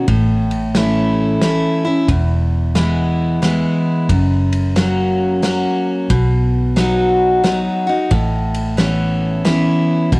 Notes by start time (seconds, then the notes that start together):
0.08 A1 A2, kick, ride
0.51 ride
0.75 E3 A3 C#4 E4, snare, ride
1.41 E3 A3 C#4 E4, snare, ride
1.84 C#4 E4
2.08 E1 E2, kick, ride
2.75 E3 G#3 B3 E4, snare, ride
3.42 E3 G#3 B3 E4, snare, ride
4.09 F#1 F#2, kick, ride
4.53 ride
4.76 F#3 A#3 C#4 F#4, snare, ride
5.43 F#3 A#3 C#4 F#4, snare, ride
6.10 B1 B2, kick, ride
6.76 F#3 B3 D#4 F#4, snare, ride
7.43 F#3 B3 D#4 F#4, snare, ride
7.87 D#4 F#4
8.11 A1 A2, kick, ride
8.54 ride
8.77 E3 B3 C#4 E4, snare, ride
9.45 E3 B3 C#4 E4, snare, ride
10.12 B1 B2, kick, ride